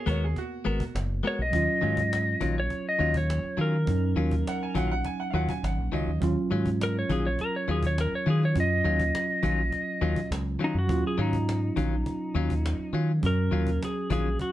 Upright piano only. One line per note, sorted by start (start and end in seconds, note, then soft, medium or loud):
0.09 0.22 C#5 medium
0.24 0.37 G#4 medium
0.38 0.94 F#4 medium
4.48 4.61 F#5 medium
4.63 4.75 G#5 medium
4.77 4.90 F#5 medium
4.87 4.90 F5 medium
4.92 5.04 F#5 medium
5.05 5.19 G#5 medium
5.20 5.33 F#5 medium
5.30 5.34 F5 medium
5.35 5.48 F#5 medium
5.49 5.63 G#5 medium
5.64 5.92 F#5 medium
5.94 6.22 D#5 medium